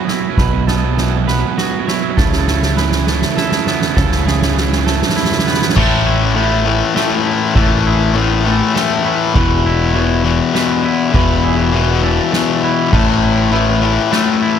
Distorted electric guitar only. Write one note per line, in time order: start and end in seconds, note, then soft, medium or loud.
5.75 6.35 A2 medium
5.75 6.35 E3 loud
5.75 6.36 A3 loud
6.35 6.64 A2 medium
6.35 6.66 E3 medium
6.35 6.66 A3 medium
6.66 6.94 A2 medium
6.66 6.95 E3 medium
6.66 6.95 A3 medium
6.95 7.54 A2 loud
6.95 7.55 E3 loud
6.95 7.55 A3 loud
7.55 8.14 A2 loud
7.55 8.15 E3 loud
7.55 8.14 A3 loud
8.15 8.44 A2 medium
8.15 8.45 E3 loud
8.15 8.45 A3 loud
8.45 8.73 A2 medium
8.45 8.74 E3 medium
8.45 8.74 A3 loud
8.74 9.33 A2 medium
8.74 9.35 E3 loud
8.74 9.33 A3 loud
9.35 9.94 E2 loud
9.35 9.93 B2 loud
9.35 9.95 E3 loud
9.94 10.23 E2 medium
9.94 10.23 B2 medium
9.94 10.24 E3 loud
10.24 10.53 E2 medium
10.24 10.53 B2 medium
10.24 10.55 E3 loud
10.54 11.11 E2 loud
10.54 11.12 B2 loud
10.54 11.14 E3 loud
11.13 11.72 E2 medium
11.13 11.72 B2 loud
11.13 11.74 E3 loud
11.73 12.01 E2 medium
11.73 12.02 B2 medium
11.73 12.03 E3 medium
12.03 12.31 E2 medium
12.03 12.31 B2 loud
12.03 12.33 E3 medium
12.32 12.91 E2 medium
12.32 12.91 B2 loud
12.32 12.92 E3 medium
12.92 13.51 A2 loud
12.92 13.52 E3 medium
12.92 13.52 A3 loud
13.51 13.80 A2 medium
13.51 13.81 E3 medium
13.51 13.81 A3 medium
13.81 14.10 A2 medium
13.81 14.12 E3 loud
13.81 14.11 A3 loud
14.11 14.59 A2 medium
14.11 14.59 E3 medium
14.11 14.59 A3 loud